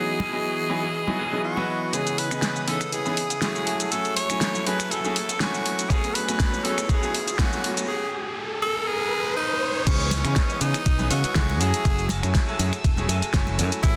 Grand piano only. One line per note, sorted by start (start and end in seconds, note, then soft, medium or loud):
0.00 0.30 F#3 medium
0.00 0.30 B3 medium
0.00 0.30 D#4 medium
0.00 0.30 E4 medium
0.00 0.30 G#4 medium
0.33 0.66 F#3 medium
0.33 0.67 B3 medium
0.33 0.67 E4 medium
0.33 0.67 G#4 medium
0.33 0.67 D#5 medium
0.69 0.81 F#3 medium
0.69 0.81 B3 medium
0.69 0.81 D#4 medium
0.69 0.81 E4 medium
0.69 0.81 G#4 loud
1.07 1.17 F#3 medium
1.07 1.17 B3 medium
1.07 1.17 D#4 medium
1.07 1.18 E4 medium
1.07 1.18 G#4 medium
1.32 1.54 F#3 medium
1.32 1.54 B3 medium
1.32 1.54 D#4 medium
1.32 1.54 E4 medium
1.32 1.54 G#4 medium
1.56 1.90 F#3 medium
1.56 1.91 B3 medium
1.56 1.91 E4 medium
1.56 1.91 B4 loud
1.56 1.91 D#5 medium
1.93 2.28 E3 medium
1.93 2.28 B3 medium
1.93 2.28 C#4 medium
1.93 2.28 G#4 medium
1.93 2.28 D#5 medium
2.31 2.65 E3 medium
2.31 2.65 B3 medium
2.31 2.65 C#4 medium
2.31 2.65 G#4 medium
2.31 2.65 D#5 medium
2.67 2.79 E3 medium
2.67 2.79 B3 medium
2.67 2.79 C#4 medium
2.67 2.79 D#4 medium
2.67 2.79 G#4 medium
3.05 3.16 E3 medium
3.05 3.16 B3 medium
3.05 3.16 C#4 medium
3.05 3.16 D#4 medium
3.05 3.16 G#4 loud
3.42 3.89 F#3 medium
3.42 3.89 A3 medium
3.42 3.89 C#4 medium
3.42 3.89 E4 medium
3.42 3.89 G#4 loud
3.91 4.26 F#3 medium
3.91 4.26 A3 medium
3.91 4.27 C#4 medium
3.91 4.27 E4 medium
3.91 4.27 G#5 medium
4.30 4.63 F#3 medium
4.30 4.63 A3 medium
4.30 4.64 C#4 medium
4.30 4.64 E4 medium
4.30 4.64 G#5 medium
4.66 4.78 F#3 medium
4.66 4.78 A3 medium
4.66 4.78 C#4 medium
4.66 4.78 E4 medium
4.66 4.78 G#4 loud
5.04 5.14 F#3 medium
5.04 5.14 A3 medium
5.04 5.15 C#4 medium
5.04 5.15 E4 medium
5.04 5.15 G#4 loud
5.41 5.87 F#3 loud
5.41 5.87 A3 medium
5.41 5.88 C#4 medium
5.41 5.88 E4 medium
5.41 5.88 G#5 loud
5.90 6.25 F#3 medium
5.90 6.25 A3 medium
5.90 6.25 B3 medium
5.90 6.25 C#4 medium
5.90 6.25 G#5 medium
6.28 6.61 F#3 medium
6.28 6.62 A3 medium
6.28 6.62 B3 medium
6.28 6.62 C#4 medium
6.28 6.62 G#5 medium
6.64 6.76 F#3 medium
6.64 6.76 A3 medium
6.64 6.76 B3 medium
6.64 6.76 C#4 medium
6.64 6.76 G#4 loud
7.02 7.12 F#3 medium
7.02 7.12 A3 medium
7.02 7.13 B3 medium
7.02 7.13 C#4 medium
7.02 7.13 G#4 loud
7.38 7.85 F#3 loud
7.38 7.85 A3 loud
7.38 7.86 B3 medium
7.38 7.86 C#4 medium
7.38 7.86 G#5 loud
9.86 10.21 E3 medium
9.86 10.21 B3 medium
9.86 10.21 C#4 medium
9.86 10.22 D#4 medium
9.86 10.22 G#4 medium
10.24 10.58 E3 medium
10.24 10.58 B3 medium
10.24 10.58 C#4 medium
10.24 10.59 G#4 medium
10.24 10.58 D#5 medium
10.61 10.72 E3 medium
10.61 10.72 B3 medium
10.61 10.73 C#4 medium
10.61 10.73 D#4 medium
10.61 10.73 G#4 loud
10.98 11.09 E3 loud
10.98 11.09 B3 medium
10.98 11.09 C#4 medium
10.98 11.09 D#4 medium
10.98 11.09 G#4 loud
11.35 11.82 F#3 loud
11.35 11.82 A3 medium
11.35 11.82 C#4 medium
11.35 11.82 E4 medium
11.35 11.83 G#4 loud
11.84 12.20 F#3 medium
11.84 12.20 A3 medium
11.84 12.20 C#4 medium
11.84 12.20 E4 medium
12.22 12.56 F#3 medium
12.22 12.57 A3 medium
12.22 12.57 C#4 medium
12.22 12.57 E4 medium
12.22 12.57 G#5 loud
12.59 12.71 F#3 loud
12.59 12.71 A3 medium
12.59 12.71 C#4 medium
12.59 12.71 E4 medium
12.59 12.71 G#4 loud
12.97 13.07 F#3 medium
12.97 13.08 A3 medium
12.97 13.08 C#4 medium
12.97 13.08 E4 medium
12.97 13.08 G#4 loud
13.34 13.80 F#3 loud
13.34 13.81 A3 loud
13.34 13.81 C#4 medium
13.34 13.81 E4 medium
13.34 13.81 G#5 loud
13.83 13.96 F#3 medium
13.83 13.96 A3 medium
13.83 13.96 B3 medium
13.83 13.96 C#4 medium
13.83 13.96 G#4 medium